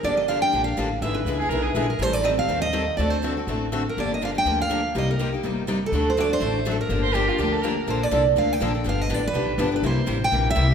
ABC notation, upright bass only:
X:1
M:4/4
L:1/8
Q:"Swing" 1/4=245
K:Gm
V:1 name="Upright bass" clef=bass
G,,,4 B,,,2 A,,,2 | ^G,,,2 ^C,,2 =B,,,2 _B,,,2 | A,,,4 E,,4 | D,,4 A,,,4 |
G,,,4 D,,4 | C,,4 G,,,4 | D,,4 A,,,4 | G,,,4 D,,4 |
B,,,2 C,,2 D,,2 B,,,2 | G,,,2 A,,,2 =B,,,2 G,,,2 | C,,2 A,,,2 B,,,2 C,,2 |]